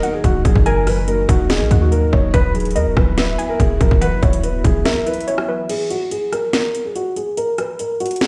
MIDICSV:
0, 0, Header, 1, 7, 480
1, 0, Start_track
1, 0, Tempo, 419580
1, 755, Time_signature, 4, 2, 24, 8
1, 9463, End_track
2, 0, Start_track
2, 0, Title_t, "Synth pluck"
2, 0, Program_c, 0, 84
2, 36, Note_on_c, 0, 78, 79
2, 712, Note_off_c, 0, 78, 0
2, 755, Note_on_c, 0, 80, 113
2, 1909, Note_off_c, 0, 80, 0
2, 1956, Note_on_c, 0, 78, 80
2, 2632, Note_off_c, 0, 78, 0
2, 2674, Note_on_c, 0, 71, 112
2, 3126, Note_off_c, 0, 71, 0
2, 3152, Note_on_c, 0, 75, 89
2, 3604, Note_off_c, 0, 75, 0
2, 3635, Note_on_c, 0, 76, 80
2, 3863, Note_off_c, 0, 76, 0
2, 3872, Note_on_c, 0, 80, 93
2, 4550, Note_off_c, 0, 80, 0
2, 4593, Note_on_c, 0, 78, 103
2, 5508, Note_off_c, 0, 78, 0
2, 5555, Note_on_c, 0, 76, 98
2, 6006, Note_off_c, 0, 76, 0
2, 6035, Note_on_c, 0, 73, 81
2, 6263, Note_off_c, 0, 73, 0
2, 6275, Note_on_c, 0, 71, 81
2, 6503, Note_off_c, 0, 71, 0
2, 9463, End_track
3, 0, Start_track
3, 0, Title_t, "Felt piano"
3, 0, Program_c, 1, 0
3, 0, Note_on_c, 1, 70, 97
3, 133, Note_off_c, 1, 70, 0
3, 156, Note_on_c, 1, 68, 68
3, 255, Note_off_c, 1, 68, 0
3, 276, Note_on_c, 1, 66, 87
3, 475, Note_off_c, 1, 66, 0
3, 513, Note_on_c, 1, 68, 82
3, 713, Note_off_c, 1, 68, 0
3, 755, Note_on_c, 1, 70, 106
3, 954, Note_off_c, 1, 70, 0
3, 994, Note_on_c, 1, 71, 85
3, 1194, Note_off_c, 1, 71, 0
3, 1236, Note_on_c, 1, 70, 80
3, 1435, Note_off_c, 1, 70, 0
3, 1475, Note_on_c, 1, 66, 84
3, 1674, Note_off_c, 1, 66, 0
3, 1717, Note_on_c, 1, 68, 89
3, 2054, Note_off_c, 1, 68, 0
3, 2075, Note_on_c, 1, 66, 79
3, 2175, Note_off_c, 1, 66, 0
3, 2193, Note_on_c, 1, 70, 78
3, 2393, Note_off_c, 1, 70, 0
3, 2435, Note_on_c, 1, 73, 79
3, 2635, Note_off_c, 1, 73, 0
3, 2673, Note_on_c, 1, 71, 114
3, 2873, Note_off_c, 1, 71, 0
3, 2914, Note_on_c, 1, 68, 74
3, 3114, Note_off_c, 1, 68, 0
3, 3153, Note_on_c, 1, 70, 80
3, 3354, Note_off_c, 1, 70, 0
3, 3393, Note_on_c, 1, 71, 81
3, 3594, Note_off_c, 1, 71, 0
3, 3634, Note_on_c, 1, 71, 87
3, 3973, Note_off_c, 1, 71, 0
3, 3995, Note_on_c, 1, 70, 81
3, 4095, Note_off_c, 1, 70, 0
3, 4113, Note_on_c, 1, 68, 76
3, 4313, Note_off_c, 1, 68, 0
3, 4353, Note_on_c, 1, 70, 74
3, 4554, Note_off_c, 1, 70, 0
3, 4592, Note_on_c, 1, 71, 108
3, 4793, Note_off_c, 1, 71, 0
3, 4832, Note_on_c, 1, 73, 83
3, 5033, Note_off_c, 1, 73, 0
3, 5074, Note_on_c, 1, 71, 84
3, 5274, Note_off_c, 1, 71, 0
3, 5314, Note_on_c, 1, 68, 77
3, 5514, Note_off_c, 1, 68, 0
3, 5553, Note_on_c, 1, 70, 87
3, 5753, Note_off_c, 1, 70, 0
3, 5795, Note_on_c, 1, 71, 82
3, 5994, Note_off_c, 1, 71, 0
3, 6033, Note_on_c, 1, 73, 70
3, 6485, Note_off_c, 1, 73, 0
3, 6514, Note_on_c, 1, 68, 92
3, 6714, Note_off_c, 1, 68, 0
3, 6753, Note_on_c, 1, 66, 82
3, 6953, Note_off_c, 1, 66, 0
3, 6994, Note_on_c, 1, 68, 87
3, 7194, Note_off_c, 1, 68, 0
3, 7235, Note_on_c, 1, 70, 78
3, 7435, Note_off_c, 1, 70, 0
3, 7474, Note_on_c, 1, 70, 95
3, 7813, Note_off_c, 1, 70, 0
3, 7837, Note_on_c, 1, 68, 66
3, 7936, Note_off_c, 1, 68, 0
3, 7957, Note_on_c, 1, 66, 85
3, 8156, Note_off_c, 1, 66, 0
3, 8194, Note_on_c, 1, 68, 78
3, 8394, Note_off_c, 1, 68, 0
3, 8436, Note_on_c, 1, 70, 105
3, 8635, Note_off_c, 1, 70, 0
3, 8675, Note_on_c, 1, 71, 81
3, 8875, Note_off_c, 1, 71, 0
3, 8917, Note_on_c, 1, 70, 78
3, 9116, Note_off_c, 1, 70, 0
3, 9156, Note_on_c, 1, 66, 83
3, 9355, Note_off_c, 1, 66, 0
3, 9397, Note_on_c, 1, 68, 85
3, 9463, Note_off_c, 1, 68, 0
3, 9463, End_track
4, 0, Start_track
4, 0, Title_t, "Ambient pad"
4, 0, Program_c, 2, 92
4, 0, Note_on_c, 2, 54, 85
4, 0, Note_on_c, 2, 63, 81
4, 0, Note_on_c, 2, 66, 79
4, 0, Note_on_c, 2, 70, 95
4, 2629, Note_off_c, 2, 66, 0
4, 2637, Note_off_c, 2, 63, 0
4, 2637, Note_off_c, 2, 70, 0
4, 2674, Note_on_c, 2, 64, 80
4, 2674, Note_on_c, 2, 66, 94
4, 2675, Note_on_c, 2, 59, 81
4, 6469, Note_off_c, 2, 54, 0
4, 6476, Note_off_c, 2, 59, 0
4, 6476, Note_off_c, 2, 64, 0
4, 6476, Note_off_c, 2, 66, 0
4, 9463, End_track
5, 0, Start_track
5, 0, Title_t, "Synth keys"
5, 0, Program_c, 3, 88
5, 0, Control_c, 3, 64, 127
5, 0, Note_on_c, 3, 51, 103
5, 0, Note_on_c, 3, 54, 86
5, 0, Note_on_c, 3, 58, 98
5, 0, Note_on_c, 3, 63, 84
5, 0, Note_on_c, 3, 75, 105
5, 38, Note_off_c, 3, 63, 0
5, 38, Note_on_c, 3, 63, 90
5, 265, Note_off_c, 3, 58, 0
5, 277, Note_off_c, 3, 54, 0
5, 279, Note_on_c, 3, 58, 89
5, 515, Note_on_c, 3, 54, 78
5, 755, Note_off_c, 3, 51, 0
5, 755, Note_on_c, 3, 51, 96
5, 979, Note_off_c, 3, 54, 0
5, 993, Note_on_c, 3, 54, 89
5, 996, Note_off_c, 3, 75, 0
5, 1222, Note_off_c, 3, 58, 0
5, 1236, Note_on_c, 3, 58, 106
5, 1237, Note_off_c, 3, 63, 0
5, 1471, Note_on_c, 3, 63, 96
5, 1712, Note_on_c, 3, 75, 104
5, 1943, Note_off_c, 3, 63, 0
5, 1955, Note_off_c, 3, 51, 0
5, 1957, Note_on_c, 3, 63, 89
5, 2183, Note_off_c, 3, 58, 0
5, 2194, Note_off_c, 3, 54, 0
5, 2197, Note_on_c, 3, 58, 87
5, 2435, Note_on_c, 3, 54, 83
5, 2670, Note_on_c, 3, 52, 95
5, 2674, Note_off_c, 3, 75, 0
5, 2675, Note_off_c, 3, 54, 0
5, 2676, Note_off_c, 3, 58, 0
5, 2676, Note_off_c, 3, 63, 0
5, 2690, Control_c, 3, 64, 0
5, 2881, Control_c, 3, 64, 127
5, 2910, Note_on_c, 3, 54, 85
5, 3150, Note_on_c, 3, 59, 94
5, 3396, Note_on_c, 3, 64, 81
5, 3629, Note_on_c, 3, 76, 103
5, 3859, Note_off_c, 3, 64, 0
5, 3872, Note_off_c, 3, 52, 0
5, 3873, Note_on_c, 3, 64, 87
5, 4102, Note_off_c, 3, 59, 0
5, 4112, Note_off_c, 3, 54, 0
5, 4115, Note_on_c, 3, 59, 96
5, 4359, Note_on_c, 3, 54, 80
5, 4590, Note_on_c, 3, 52, 105
5, 4819, Note_off_c, 3, 54, 0
5, 4832, Note_off_c, 3, 76, 0
5, 4832, Note_on_c, 3, 54, 87
5, 5062, Note_off_c, 3, 59, 0
5, 5074, Note_off_c, 3, 64, 0
5, 5076, Note_on_c, 3, 59, 89
5, 5307, Note_on_c, 3, 64, 80
5, 5559, Note_on_c, 3, 76, 103
5, 5777, Note_off_c, 3, 64, 0
5, 5791, Note_on_c, 3, 64, 96
5, 5792, Note_off_c, 3, 52, 0
5, 6023, Note_off_c, 3, 59, 0
5, 6033, Note_off_c, 3, 54, 0
5, 6037, Note_on_c, 3, 59, 88
5, 6273, Note_on_c, 3, 54, 81
5, 6513, Note_off_c, 3, 64, 0
5, 6514, Note_off_c, 3, 54, 0
5, 6516, Note_off_c, 3, 59, 0
5, 6517, Note_off_c, 3, 76, 0
5, 6530, Control_c, 3, 64, 0
5, 9463, End_track
6, 0, Start_track
6, 0, Title_t, "808-style bass"
6, 0, Program_c, 4, 38
6, 275, Note_on_c, 4, 25, 105
6, 505, Note_off_c, 4, 25, 0
6, 515, Note_on_c, 4, 27, 105
6, 630, Note_off_c, 4, 27, 0
6, 636, Note_on_c, 4, 30, 109
6, 1442, Note_off_c, 4, 30, 0
6, 1474, Note_on_c, 4, 27, 111
6, 1834, Note_on_c, 4, 34, 100
6, 1851, Note_off_c, 4, 27, 0
6, 1948, Note_off_c, 4, 34, 0
6, 1955, Note_on_c, 4, 39, 104
6, 2415, Note_off_c, 4, 39, 0
6, 2435, Note_on_c, 4, 27, 103
6, 2665, Note_off_c, 4, 27, 0
6, 2675, Note_on_c, 4, 27, 103
6, 3154, Note_on_c, 4, 39, 98
6, 3171, Note_off_c, 4, 27, 0
6, 3274, Note_on_c, 4, 27, 102
6, 3291, Note_off_c, 4, 39, 0
6, 3388, Note_off_c, 4, 27, 0
6, 3394, Note_on_c, 4, 27, 110
6, 3855, Note_off_c, 4, 27, 0
6, 4115, Note_on_c, 4, 27, 107
6, 4345, Note_off_c, 4, 27, 0
6, 4355, Note_on_c, 4, 27, 106
6, 4470, Note_off_c, 4, 27, 0
6, 4475, Note_on_c, 4, 27, 110
6, 4714, Note_on_c, 4, 30, 104
6, 4731, Note_off_c, 4, 27, 0
6, 4828, Note_off_c, 4, 30, 0
6, 4835, Note_on_c, 4, 27, 107
6, 5296, Note_off_c, 4, 27, 0
6, 5314, Note_on_c, 4, 27, 111
6, 5545, Note_off_c, 4, 27, 0
6, 9463, End_track
7, 0, Start_track
7, 0, Title_t, "Drums"
7, 37, Note_on_c, 9, 42, 88
7, 152, Note_off_c, 9, 42, 0
7, 275, Note_on_c, 9, 36, 97
7, 276, Note_on_c, 9, 42, 69
7, 389, Note_off_c, 9, 36, 0
7, 391, Note_off_c, 9, 42, 0
7, 515, Note_on_c, 9, 36, 98
7, 516, Note_on_c, 9, 42, 71
7, 629, Note_off_c, 9, 36, 0
7, 630, Note_off_c, 9, 42, 0
7, 635, Note_on_c, 9, 36, 94
7, 750, Note_off_c, 9, 36, 0
7, 755, Note_on_c, 9, 42, 88
7, 870, Note_off_c, 9, 42, 0
7, 994, Note_on_c, 9, 46, 79
7, 995, Note_on_c, 9, 37, 75
7, 1108, Note_off_c, 9, 46, 0
7, 1110, Note_off_c, 9, 37, 0
7, 1234, Note_on_c, 9, 42, 83
7, 1348, Note_off_c, 9, 42, 0
7, 1474, Note_on_c, 9, 36, 108
7, 1476, Note_on_c, 9, 42, 84
7, 1588, Note_off_c, 9, 36, 0
7, 1591, Note_off_c, 9, 42, 0
7, 1713, Note_on_c, 9, 42, 84
7, 1714, Note_on_c, 9, 38, 113
7, 1827, Note_off_c, 9, 42, 0
7, 1828, Note_off_c, 9, 38, 0
7, 1955, Note_on_c, 9, 36, 101
7, 1957, Note_on_c, 9, 42, 81
7, 2069, Note_off_c, 9, 36, 0
7, 2071, Note_off_c, 9, 42, 0
7, 2196, Note_on_c, 9, 42, 70
7, 2311, Note_off_c, 9, 42, 0
7, 2434, Note_on_c, 9, 36, 97
7, 2549, Note_off_c, 9, 36, 0
7, 2674, Note_on_c, 9, 36, 120
7, 2675, Note_on_c, 9, 42, 88
7, 2789, Note_off_c, 9, 36, 0
7, 2789, Note_off_c, 9, 42, 0
7, 2915, Note_on_c, 9, 42, 64
7, 2975, Note_off_c, 9, 42, 0
7, 2975, Note_on_c, 9, 42, 63
7, 3035, Note_off_c, 9, 42, 0
7, 3035, Note_on_c, 9, 42, 63
7, 3096, Note_off_c, 9, 42, 0
7, 3096, Note_on_c, 9, 42, 64
7, 3154, Note_off_c, 9, 42, 0
7, 3154, Note_on_c, 9, 42, 83
7, 3269, Note_off_c, 9, 42, 0
7, 3394, Note_on_c, 9, 36, 109
7, 3396, Note_on_c, 9, 37, 69
7, 3508, Note_off_c, 9, 36, 0
7, 3510, Note_off_c, 9, 37, 0
7, 3633, Note_on_c, 9, 42, 81
7, 3634, Note_on_c, 9, 38, 115
7, 3748, Note_off_c, 9, 42, 0
7, 3749, Note_off_c, 9, 38, 0
7, 3878, Note_on_c, 9, 42, 86
7, 3992, Note_off_c, 9, 42, 0
7, 4115, Note_on_c, 9, 36, 98
7, 4117, Note_on_c, 9, 42, 69
7, 4229, Note_off_c, 9, 36, 0
7, 4231, Note_off_c, 9, 42, 0
7, 4354, Note_on_c, 9, 36, 95
7, 4356, Note_on_c, 9, 42, 69
7, 4469, Note_off_c, 9, 36, 0
7, 4470, Note_off_c, 9, 42, 0
7, 4475, Note_on_c, 9, 36, 93
7, 4590, Note_off_c, 9, 36, 0
7, 4595, Note_on_c, 9, 42, 83
7, 4709, Note_off_c, 9, 42, 0
7, 4834, Note_on_c, 9, 42, 48
7, 4835, Note_on_c, 9, 36, 98
7, 4948, Note_off_c, 9, 42, 0
7, 4950, Note_off_c, 9, 36, 0
7, 4954, Note_on_c, 9, 42, 79
7, 5068, Note_off_c, 9, 42, 0
7, 5073, Note_on_c, 9, 42, 84
7, 5188, Note_off_c, 9, 42, 0
7, 5314, Note_on_c, 9, 36, 108
7, 5316, Note_on_c, 9, 42, 86
7, 5428, Note_off_c, 9, 36, 0
7, 5431, Note_off_c, 9, 42, 0
7, 5553, Note_on_c, 9, 42, 83
7, 5554, Note_on_c, 9, 38, 110
7, 5668, Note_off_c, 9, 42, 0
7, 5669, Note_off_c, 9, 38, 0
7, 5795, Note_on_c, 9, 42, 68
7, 5875, Note_off_c, 9, 42, 0
7, 5875, Note_on_c, 9, 42, 67
7, 5955, Note_off_c, 9, 42, 0
7, 5955, Note_on_c, 9, 42, 67
7, 6037, Note_off_c, 9, 42, 0
7, 6037, Note_on_c, 9, 42, 69
7, 6151, Note_off_c, 9, 42, 0
7, 6154, Note_on_c, 9, 37, 101
7, 6269, Note_off_c, 9, 37, 0
7, 6515, Note_on_c, 9, 42, 83
7, 6515, Note_on_c, 9, 49, 94
7, 6629, Note_off_c, 9, 42, 0
7, 6629, Note_off_c, 9, 49, 0
7, 6754, Note_on_c, 9, 42, 73
7, 6869, Note_off_c, 9, 42, 0
7, 6994, Note_on_c, 9, 42, 77
7, 7109, Note_off_c, 9, 42, 0
7, 7236, Note_on_c, 9, 37, 67
7, 7237, Note_on_c, 9, 42, 73
7, 7350, Note_off_c, 9, 37, 0
7, 7351, Note_off_c, 9, 42, 0
7, 7473, Note_on_c, 9, 42, 75
7, 7474, Note_on_c, 9, 38, 112
7, 7588, Note_off_c, 9, 42, 0
7, 7589, Note_off_c, 9, 38, 0
7, 7717, Note_on_c, 9, 42, 84
7, 7832, Note_off_c, 9, 42, 0
7, 7957, Note_on_c, 9, 42, 69
7, 8071, Note_off_c, 9, 42, 0
7, 8196, Note_on_c, 9, 42, 75
7, 8310, Note_off_c, 9, 42, 0
7, 8435, Note_on_c, 9, 42, 84
7, 8550, Note_off_c, 9, 42, 0
7, 8674, Note_on_c, 9, 42, 72
7, 8676, Note_on_c, 9, 37, 74
7, 8789, Note_off_c, 9, 42, 0
7, 8791, Note_off_c, 9, 37, 0
7, 8914, Note_on_c, 9, 42, 76
7, 9029, Note_off_c, 9, 42, 0
7, 9156, Note_on_c, 9, 42, 65
7, 9216, Note_off_c, 9, 42, 0
7, 9216, Note_on_c, 9, 42, 66
7, 9276, Note_off_c, 9, 42, 0
7, 9276, Note_on_c, 9, 42, 66
7, 9336, Note_off_c, 9, 42, 0
7, 9336, Note_on_c, 9, 42, 66
7, 9394, Note_off_c, 9, 42, 0
7, 9394, Note_on_c, 9, 42, 76
7, 9395, Note_on_c, 9, 38, 112
7, 9463, Note_off_c, 9, 38, 0
7, 9463, Note_off_c, 9, 42, 0
7, 9463, End_track
0, 0, End_of_file